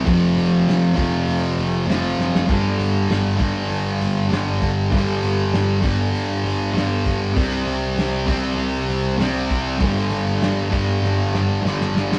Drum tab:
CC |----------------|x---------------|----------------|----------------|
HH |o-o-o-o-o-o-o---|--o-o-o-o-o-o-o-|o-o-o-o-o-o-o-o-|o-o-o-o-o-o-o-o-|
SD |----o-------o-oo|----o-------o---|----o-------o---|----o-------o---|
BD |o-----o---------|o-----o-------o-|o-----o-------o-|o-----o-------o-|

CC |----------------|
HH |o-o-o-o---------|
SD |----o---o-o-oooo|
BD |o-----o---------|